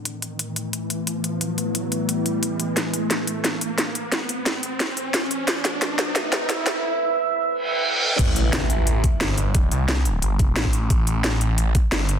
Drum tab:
CC |----------------|----------------|----------------|----------------|
HH |x-x-x-x-x-x-x-x-|x-x-x-x-x-x-x-x-|x-x-x-x-x-x-x-x-|x-x-x-x-x-x-x-x-|
SD |----------------|----------------|o---o---o---o---|o---o---o---o---|
BD |----------------|----------------|----------------|----------------|

CC |----------------|----------------|x---------------|----------------|
HH |x-x-x-x-x-x-x-x-|----------------|x-x-x-x-x-x-x-x-|x-x-x-x-x-x-x-x-|
SD |o-o-o-o-o-o-o-o-|----------------|----o-------o---|----o-------o---|
BD |----------------|----------------|o---------o-----|o---------o--o--|

CC |----------------|
HH |x-x-x-x-x-x-x-x-|
SD |----o-------o---|
BD |o---------o-----|